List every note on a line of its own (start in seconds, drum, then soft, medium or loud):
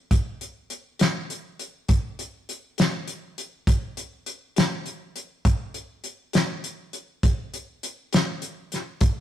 0.11 kick medium
0.11 closed hi-hat medium
0.41 closed hi-hat soft
0.70 closed hi-hat soft
0.99 snare medium
0.99 closed hi-hat medium
1.30 closed hi-hat soft
1.59 closed hi-hat soft
1.89 kick medium
1.89 closed hi-hat medium
2.19 closed hi-hat medium
2.49 closed hi-hat soft
2.78 snare medium
2.78 closed hi-hat medium
3.08 closed hi-hat soft
3.38 closed hi-hat medium
3.67 kick medium
3.67 closed hi-hat medium
3.97 closed hi-hat medium
4.26 closed hi-hat soft
4.56 snare medium
4.56 closed hi-hat medium
4.86 closed hi-hat soft
5.16 closed hi-hat soft
5.45 kick medium
5.45 closed hi-hat medium
5.74 closed hi-hat soft
6.04 closed hi-hat soft
6.33 snare medium
6.33 closed hi-hat medium
6.64 closed hi-hat soft
6.93 closed hi-hat soft
7.23 kick medium
7.23 closed hi-hat medium
7.54 closed hi-hat soft
7.83 closed hi-hat medium
8.13 snare medium
8.13 closed hi-hat medium
8.42 closed hi-hat medium
8.72 snare soft
8.72 closed hi-hat soft
9.01 kick medium
9.01 closed hi-hat medium